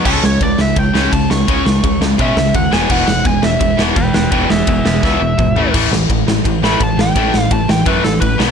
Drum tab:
CC |x-------|--------|x-------|--------|
RD |--x-x-x-|x-x-x-x-|--x-x-x-|x-x-----|
SD |-o-o-o-o|-o-o-o-o|-o-o-o-o|-o-oo---|
T2 |--------|--------|--------|------o-|
FT |--------|--------|--------|-------o|
BD |o-o-o-o-|o-o-o-o-|o-o-o-o-|o-o-o-o-|

CC |x-------|--------|
RD |--x-x-x-|x-x-x-x-|
SD |-o-o-o-o|-o-o-o-o|
T2 |--------|--------|
FT |--------|--------|
BD |o-o-o-o-|o-o-o-o-|